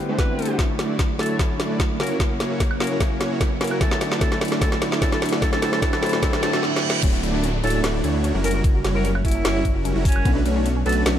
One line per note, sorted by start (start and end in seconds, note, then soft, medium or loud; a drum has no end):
0.00 0.28 D3 medium
0.00 0.29 G3 medium
0.00 0.29 B3 medium
0.00 0.30 C4 medium
0.00 0.30 E4 loud
0.00 0.61 F#4 loud
0.00 riser medium
0.09 0.36 A3 medium
0.09 0.36 C4 medium
0.09 0.36 D4 medium
0.09 0.36 G4 medium
0.09 0.36 C5 loud
0.19 0.59 B4 medium
0.19 kick loud
0.19 snare medium
0.19 closed hi-hat medium
0.28 0.56 D3 medium
0.28 0.56 G3 medium
0.28 0.57 B3 medium
0.28 0.57 C4 medium
0.28 0.57 E4 medium
0.39 0.57 A3 medium
0.39 0.57 C4 medium
0.39 0.57 D4 medium
0.39 0.57 G4 medium
0.39 0.57 C5 loud
0.39 closed hi-hat soft
0.42 closed hi-hat medium
0.45 closed hi-hat medium
0.57 1.16 D3 medium
0.57 1.17 F#3 medium
0.57 1.17 A3 medium
0.57 1.17 C#4 medium
0.57 kick loud
0.57 snare medium
0.57 closed hi-hat medium
0.61 1.18 E4 medium
0.79 1.02 A3 medium
0.79 1.02 D4 medium
0.79 1.02 E4 medium
0.79 1.02 F#4 medium
0.79 1.02 D5 medium
0.79 snare medium
0.79 closed hi-hat medium
0.99 kick loud
0.99 snare medium
0.99 closed hi-hat medium
1.18 1.27 D3 medium
1.18 1.27 F#3 medium
1.18 1.37 A3 medium
1.18 1.27 A3 medium
1.18 1.28 C#4 medium
1.18 1.37 D4 medium
1.18 1.37 E4 medium
1.18 1.37 F#4 medium
1.18 1.28 F#4 medium
1.18 1.26 A4 medium
1.18 1.37 C#5 medium
1.18 snare medium
1.18 closed hi-hat soft
1.23 closed hi-hat medium
1.26 1.36 A4 medium
1.26 closed hi-hat medium
1.37 1.97 D3 medium
1.37 1.97 F#3 medium
1.37 1.98 A3 medium
1.37 1.54 A3 medium
1.37 1.98 C#4 medium
1.37 1.54 D4 medium
1.37 1.54 E4 medium
1.37 1.99 E4 medium
1.37 1.54 F#4 medium
1.37 1.54 C#5 loud
1.37 kick medium
1.37 snare medium
1.37 closed hi-hat medium
1.60 1.82 A3 medium
1.60 1.82 D4 medium
1.60 1.82 E4 medium
1.60 1.82 F#4 medium
1.60 1.82 D5 medium
1.60 snare medium
1.60 closed hi-hat medium
1.80 kick loud
1.80 snare medium
1.80 closed hi-hat medium
1.99 2.07 C#3 medium
1.99 2.08 F#3 medium
1.99 2.18 A#3 medium
1.99 2.08 A#3 medium
1.99 2.18 C#4 medium
1.99 2.08 C#4 medium
1.99 2.18 E4 medium
1.99 2.18 F#4 medium
1.99 2.09 F#4 medium
1.99 2.07 A#4 medium
1.99 2.18 C#5 medium
1.99 snare medium
1.99 closed hi-hat soft
2.03 closed hi-hat medium
2.07 2.17 A#4 medium
2.07 closed hi-hat medium
2.18 2.77 C#3 medium
2.18 2.78 F#3 medium
2.18 2.78 A#3 medium
2.18 2.34 A#3 medium
2.18 2.34 C#4 medium
2.18 2.79 C#4 medium
2.18 2.34 E4 medium
2.18 2.79 E4 medium
2.18 2.34 F#4 medium
2.18 kick loud
2.18 snare medium
2.18 closed hi-hat medium
2.40 2.63 A#3 medium
2.40 2.63 C#4 medium
2.40 2.63 E4 medium
2.40 2.63 F#4 medium
2.40 2.63 C#5 medium
2.40 snare medium
2.40 closed hi-hat medium
2.60 kick loud
2.60 snare medium
2.60 closed hi-hat medium
2.71 high woodblock medium
2.79 2.88 C#3 medium
2.79 2.88 F#3 medium
2.79 2.98 A#3 medium
2.79 2.88 A#3 medium
2.79 2.98 C#4 medium
2.79 2.89 C#4 medium
2.79 2.98 E4 medium
2.79 2.98 F#4 medium
2.79 2.89 F#4 medium
2.79 2.87 A#4 medium
2.79 2.98 C#5 loud
2.79 snare medium
2.79 closed hi-hat soft
2.84 closed hi-hat medium
2.87 2.97 A#4 medium
2.87 closed hi-hat medium
2.98 3.58 C#3 medium
2.98 3.58 F#3 medium
2.98 3.59 A#3 medium
2.98 3.59 C#4 medium
2.98 3.60 E4 loud
2.98 kick medium
2.98 snare medium
2.98 closed hi-hat medium
3.20 3.43 A#3 medium
3.20 3.43 C#4 medium
3.20 3.43 E4 medium
3.20 3.43 F#4 medium
3.20 3.43 C#5 medium
3.20 snare medium
3.20 closed hi-hat medium
3.41 kick loud
3.41 snare medium
3.41 closed hi-hat medium
3.60 3.69 C#3 medium
3.60 3.69 F#3 medium
3.60 3.79 A#3 medium
3.60 3.69 A#3 medium
3.60 3.79 C#4 medium
3.60 3.69 C#4 medium
3.60 3.79 E4 medium
3.60 3.79 F#4 medium
3.60 3.70 F#4 loud
3.60 3.68 A#4 medium
3.60 3.79 C#5 medium
3.60 snare medium
3.60 closed hi-hat soft
3.64 closed hi-hat medium
3.67 closed hi-hat medium
3.67 high woodblock medium
3.72 3.78 A#4 medium
3.79 4.18 D3 medium
3.79 4.19 F#3 medium
3.79 3.95 A3 medium
3.79 4.20 A3 medium
3.79 4.20 C#4 medium
3.79 3.95 D4 medium
3.79 3.95 E4 medium
3.79 3.95 F#4 medium
3.79 3.88 A4 medium
3.79 3.95 C#5 loud
3.79 kick loud
3.79 snare medium
3.79 closed hi-hat medium
3.83 4.21 E4 loud
3.91 3.98 A4 medium
3.91 snare medium
4.01 4.20 A3 medium
4.01 4.20 D4 medium
4.01 4.20 E4 medium
4.01 4.20 F#4 medium
4.01 4.20 D5 medium
4.01 snare medium
4.01 closed hi-hat medium
4.12 snare medium
4.19 4.58 D3 medium
4.19 4.59 F#3 medium
4.19 4.36 A3 medium
4.19 4.60 A3 medium
4.19 4.61 C#4 medium
4.19 4.36 D4 medium
4.19 4.36 E4 medium
4.19 4.61 E4 loud
4.19 4.28 A4 medium
4.19 kick loud
4.19 snare medium
4.19 closed hi-hat medium
4.32 4.38 A4 medium
4.32 snare medium
4.41 4.60 A3 medium
4.41 4.60 D4 medium
4.41 4.60 E4 medium
4.41 4.60 F#4 medium
4.41 4.60 D5 medium
4.41 snare loud
4.41 closed hi-hat soft
4.45 closed hi-hat medium
4.48 snare medium
4.48 closed hi-hat medium
4.60 4.99 D3 medium
4.60 5.00 F#3 medium
4.60 4.76 A3 loud
4.60 5.00 A3 medium
4.60 5.01 C#4 medium
4.60 4.76 D4 medium
4.60 4.76 E4 medium
4.60 4.76 F#4 medium
4.60 4.68 A4 medium
4.60 4.76 C#5 loud
4.60 kick loud
4.60 snare medium
4.60 closed hi-hat medium
4.64 5.01 E4 loud
4.72 4.78 A4 medium
4.72 snare medium
4.82 5.00 A3 medium
4.82 5.00 D4 medium
4.82 5.00 E4 medium
4.82 5.00 F#4 medium
4.82 5.00 D5 medium
4.82 snare loud
4.82 closed hi-hat medium
4.92 snare medium
5.00 5.39 D3 loud
5.00 5.40 F#3 medium
5.00 5.16 A3 loud
5.00 5.41 A3 medium
5.00 5.41 C#4 medium
5.00 5.16 D4 medium
5.00 5.16 E4 medium
5.00 5.42 E4 loud
5.00 5.16 F#4 medium
5.00 5.08 A4 medium
5.00 5.16 C#5 loud
5.00 kick loud
5.00 snare loud
5.00 closed hi-hat medium
5.12 5.19 A4 medium
5.12 snare medium
5.22 5.41 A3 medium
5.22 5.41 D4 medium
5.22 5.41 E4 medium
5.22 5.41 F#4 medium
5.22 5.41 D5 medium
5.22 snare loud
5.22 closed hi-hat medium
5.26 closed hi-hat medium
5.29 snare medium
5.29 closed hi-hat medium
5.40 5.59 D3 medium
5.40 5.60 F#3 medium
5.40 5.61 A3 medium
5.40 5.61 C4 medium
5.40 5.62 E4 loud
5.40 5.49 A4 medium
5.40 kick loud
5.40 snare loud
5.40 closed hi-hat medium
5.52 5.59 A4 medium
5.52 snare medium
5.60 5.79 D3 medium
5.60 5.80 F#3 medium
5.60 5.76 A3 loud
5.60 5.81 A3 medium
5.60 5.81 C4 medium
5.60 5.76 D4 medium
5.60 5.76 E4 medium
5.60 5.82 E4 loud
5.60 5.76 F#4 medium
5.60 5.69 A4 medium
5.60 5.76 C5 loud
5.60 snare loud
5.60 closed hi-hat medium
5.72 5.79 A4 medium
5.72 snare medium
5.80 5.99 D3 medium
5.80 6.00 F#3 medium
5.80 6.01 A3 medium
5.80 5.97 A3 loud
5.80 6.01 C4 medium
5.80 5.97 D4 medium
5.80 6.02 E4 loud
5.80 5.89 A4 medium
5.80 kick loud
5.80 snare loud
5.80 closed hi-hat medium
5.93 5.99 A4 medium
5.93 snare medium
5.93 high woodblock medium
6.00 6.19 D3 loud
6.00 6.20 F#3 medium
6.00 6.21 A3 medium
6.00 6.17 A3 loud
6.00 6.22 C4 medium
6.00 6.17 D4 medium
6.00 6.17 E4 medium
6.00 6.22 E4 loud
6.00 6.17 F#4 loud
6.00 6.09 A4 loud
6.00 6.17 C5 loud
6.00 snare loud
6.00 closed hi-hat soft
6.06 closed hi-hat medium
6.09 6.19 A4 medium
6.09 snare medium
6.09 closed hi-hat medium
6.21 6.39 D3 loud
6.21 6.40 F#3 medium
6.21 6.41 A3 medium
6.21 6.42 C4 medium
6.21 6.30 A4 medium
6.21 kick loud
6.21 snare loud
6.21 closed hi-hat medium
6.21 reverse cymbal medium
6.25 6.42 E4 loud
6.33 6.39 A4 medium
6.33 snare loud
6.41 6.60 D3 loud
6.41 6.61 F#3 medium
6.41 6.61 A3 medium
6.41 6.57 A3 loud
6.41 6.62 C4 medium
6.41 6.57 D4 loud
6.41 6.57 E4 loud
6.41 6.57 F#4 medium
6.41 6.50 A4 loud
6.41 6.57 C5 loud
6.41 snare loud
6.41 closed hi-hat medium
6.45 6.62 E4 loud
6.53 6.59 A4 medium
6.53 snare loud
6.63 snare medium
6.76 snare medium
6.90 snare loud
7.03 7.21 D1 loud
7.03 7.17 A3 loud
7.03 7.08 C#4 medium
7.03 7.17 D4 medium
7.03 7.17 E4 medium
7.03 7.17 F#4 medium
7.03 7.17 C#5 loud
7.03 kick loud
7.03 closed hi-hat medium
7.03 crash loud
7.03 downlifter medium
7.14 7.18 E4 medium
7.23 7.62 D1 loud
7.23 7.46 A3 medium
7.23 7.46 D4 medium
7.23 7.26 E4 medium
7.23 7.46 E4 medium
7.23 7.46 F#4 medium
7.23 7.46 D5 medium
7.23 closed hi-hat medium
7.34 7.38 D4 medium
7.44 7.46 C#4 medium
7.44 closed hi-hat medium
7.54 7.61 D4 medium
7.64 7.82 D1 loud
7.64 7.81 A3 medium
7.64 7.68 C#4 loud
7.64 7.81 D4 medium
7.64 7.81 E4 medium
7.64 7.81 F#4 medium
7.64 7.70 A4 medium
7.64 7.81 C#5 loud
7.64 closed hi-hat soft
7.67 closed hi-hat medium
7.70 7.81 C#4 medium
7.70 7.80 A4 medium
7.70 closed hi-hat medium
7.84 8.02 D1 medium
7.84 8.02 A3 medium
7.84 8.02 D4 medium
7.84 8.02 E4 medium
7.84 8.02 F#4 medium
7.84 7.88 A4 medium
7.84 8.02 D5 loud
7.84 snare loud
7.84 closed hi-hat medium
7.94 7.97 E4 medium
8.04 8.32 D2 loud
8.04 8.32 A3 medium
8.04 8.32 D4 medium
8.04 8.07 E4 medium
8.04 8.32 E4 medium
8.04 8.32 F#4 medium
8.04 8.32 C#5 medium
8.04 closed hi-hat medium
8.14 8.19 D4 medium
8.24 8.27 C#4 medium
8.24 closed hi-hat medium
8.34 8.62 F#1 loud
8.34 8.62 G3 medium
8.34 8.62 C#4 medium
8.34 8.41 D4 medium
8.34 8.62 E4 medium
8.34 8.62 F#4 medium
8.34 8.62 A#4 loud
8.44 8.49 C#4 loud
8.44 8.51 A#4 medium
8.44 closed hi-hat medium
8.44 open hi-hat loud
8.51 8.59 F#4 medium
8.51 8.61 A#4 medium
8.51 closed hi-hat medium
8.64 8.82 F#1 loud
8.64 8.69 C#4 medium
8.64 8.79 A#4 loud
8.64 kick loud
8.64 closed hi-hat medium
8.75 8.79 F#4 medium
8.84 9.23 F#1 loud
8.84 9.07 G3 medium
8.84 9.07 C#4 medium
8.84 9.07 E4 medium
8.84 9.07 F#4 medium
8.84 8.87 F#4 medium
8.84 9.07 C#5 medium
8.84 snare medium
8.84 closed hi-hat medium
8.95 8.99 E4 medium
8.95 9.01 A#4 medium
9.04 9.07 C#4 medium
9.04 9.11 A#4 medium
9.04 closed hi-hat medium
9.15 9.22 E4 medium
9.15 high woodblock medium
9.25 9.43 F#1 loud
9.25 9.43 G3 medium
9.25 9.29 C#4 loud
9.25 9.43 C#4 medium
9.25 9.43 E4 medium
9.25 9.81 E4 loud
9.25 9.43 F#4 medium
9.25 9.43 A#4 loud
9.25 kick medium
9.25 closed hi-hat medium
9.28 closed hi-hat medium
9.31 9.42 C#4 medium
9.31 closed hi-hat medium
9.45 9.63 F#1 loud
9.45 9.63 G3 medium
9.45 9.63 C#4 medium
9.45 9.63 E4 medium
9.45 9.63 F#4 medium
9.45 9.50 A#4 medium
9.45 9.63 C#5 loud
9.45 snare loud
9.45 closed hi-hat medium
9.55 9.58 F#4 medium
9.65 9.94 F#1 loud
9.65 9.68 F#4 medium
9.65 kick medium
9.65 closed hi-hat medium
9.75 9.80 E4 medium
9.85 9.88 C#4 medium
9.85 closed hi-hat medium
9.96 10.23 F#1 loud
9.96 10.23 G3 medium
9.96 10.23 C#4 medium
9.96 10.23 E4 medium
9.96 10.02 E4 medium
9.96 10.23 F#4 medium
9.96 10.23 A#4 loud
10.05 10.10 C#4 loud
10.05 10.30 C#4 loud
10.05 kick loud
10.05 closed hi-hat medium
10.05 open hi-hat loud
10.12 10.20 F#4 medium
10.12 closed hi-hat medium
10.12 high woodblock medium
10.25 10.44 B1 loud
10.25 10.40 A3 loud
10.25 10.30 B3 medium
10.25 10.40 C#4 medium
10.25 10.40 D4 medium
10.25 10.40 F#4 medium
10.25 10.40 B4 loud
10.25 kick loud
10.25 closed hi-hat medium
10.36 10.40 D4 medium
10.46 10.84 B1 loud
10.46 10.68 A3 medium
10.46 10.68 C#4 medium
10.46 10.68 D4 medium
10.46 10.48 D4 medium
10.46 10.68 F#4 medium
10.46 10.68 C#5 medium
10.46 closed hi-hat medium
10.56 10.60 C#4 medium
10.66 10.69 B3 medium
10.66 closed hi-hat medium
10.76 10.83 C#4 medium
10.86 11.04 B1 loud
10.86 11.04 A3 medium
10.86 10.91 B3 loud
10.86 11.04 C#4 medium
10.86 11.04 D4 medium
10.86 11.04 F#4 medium
10.86 10.93 A4 loud
10.86 11.04 B4 loud
10.86 closed hi-hat soft
10.89 closed hi-hat medium
10.92 closed hi-hat medium
10.97 11.03 B3 medium
10.97 11.03 A4 medium
11.06 11.19 B1 loud
11.06 11.19 A3 medium
11.06 11.19 C#4 medium
11.06 11.19 D4 medium
11.06 11.19 F#4 medium
11.06 11.11 A4 medium
11.06 11.19 C#5 loud
11.06 snare loud
11.06 closed hi-hat medium